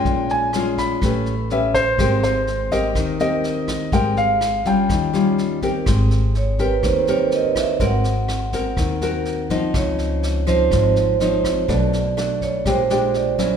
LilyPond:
<<
  \new Staff \with { instrumentName = "Grand piano" } { \time 4/4 \key aes \major \tempo 4 = 124 g''8 aes''4 ces'''4. e''8 c''8~ | c''8 c''4 ees''4 ees''4. | g''8 f''4 g''4. r4 | r1 |
r1 | r1 | r1 | }
  \new Staff \with { instrumentName = "Vibraphone" } { \time 4/4 \key aes \major r1 | r1 | r1 | r4 des''8 ces''8 c''8 des''8 ees''8 fes''8 |
ges''8 r2. r8 | des''4. c''8 r4 des''4 | d''4. des''8 c''4 d''4 | }
  \new Staff \with { instrumentName = "Nylon-string guitar" } { \time 4/4 \key aes \major << { <aes des' f'>4 <aes des' f'>4 <cis' g' b'>8 r8 <cis' g' b'>8 r8 | <c' g' bes'>4 r8 <c' g' bes'>4 <c' g' bes'>4. | <c' g' bes'>4 r8 <g des' f'>4 <g des' f'>4 <c' g' bes'>8~ | <c' g' bes'>4 r8 <c' g' bes'>4 <c' g' bes'>4. |
<c' ges' bes'>4. <c' ges' bes'>4 <c' ges' bes'>4 <f c' ees'>8~ | <f c' ees'>4. <f c' ees'>4. <f c' ees'>4 | <a d' fis'>8 r8 <a d' fis'>4 <aes d' g'>8 <aes d' g'>4 <ges des' fes'>8 | } \\ { bes,2 a2 | aes2 ees2 | aes2 ees2 | aes2 ees2 |
aes2 ees2 | des2 aes,2 | b,2 bes,2 | } >> }
  \new Staff \with { instrumentName = "Upright bass" } { \clef bass \time 4/4 \key aes \major bes,,2 a,,2 | aes,,2 ees,2 | aes,,2 ees,2 | aes,,2 ees,2 |
aes,,2 ees,2 | des,2 aes,,2 | b,,2 bes,,2 | }
  \new DrumStaff \with { instrumentName = "Drums" } \drummode { \time 4/4 <bd sn>8 sn8 <ss sn>8 <bd sn>8 <bd ss sn>8 sn8 sn8 <bd sn>8 | <bd ss sn>8 sn8 sn8 <bd sn>8 <bd ss sn>8 sn8 sn8 <bd ss sn>8 | <bd sn>8 sn8 <ss sn>8 <bd sn>8 <bd ss sn>8 sn8 sn8 <bd sn>8 | <bd ss sn>8 sn8 sn8 <bd sn>8 <bd ss sn>8 sn8 sn8 <bd ss sn>8 |
<bd sn>8 sn8 <ss sn>8 <bd sn>8 <bd ss sn>8 sn8 sn8 <bd sn>8 | <bd ss sn>8 sn8 sn8 <bd sn>8 <bd ss sn>8 sn8 sn8 <bd ss sn>8 | <bd sn>8 sn8 <ss sn>8 <bd sn>8 <bd ss sn>8 sn8 sn8 <bd sn>8 | }
>>